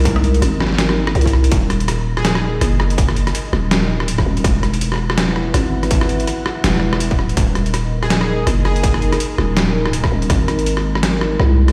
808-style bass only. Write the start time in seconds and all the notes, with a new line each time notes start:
Already playing: C2
0.42 G#1
1.15 C2
1.52 D#1
2.61 F#1
3.53 D#1
4.04 D1
4.26 D#1
4.44 E1
5.54 G#1
6.64 E1
7.15 D#1
7.37 D#1
8.47 F#1
9.38 D#1
10.12 D#1
10.30 G#1
11.40 C2